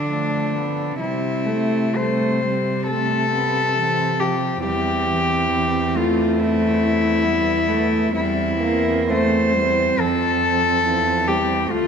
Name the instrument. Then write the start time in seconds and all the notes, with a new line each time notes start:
cello
Already playing: D3 D4
0.10 F3 A3
0.55 B3
1.00 C3 G3 C4 E4
1.46 A3
1.95 G3 A3 C5
2.41 G3
2.87 A3 A4
3.32 B3
3.75 E3 C4
4.19 F3 G4
4.63 E2 G3 C4 G4
5.07 E3
5.51 E3
5.96 A3 F4
6.39 C4 E4
7.23 G3 B3
7.69 A3
8.14 E2 G3 C4 E4
8.62 A#3
9.10 A3 C5
9.55 G3
9.98 F2 F3 A4
10.84 E2 F3
11.26 G3 G4
11.71 D2 A3 F4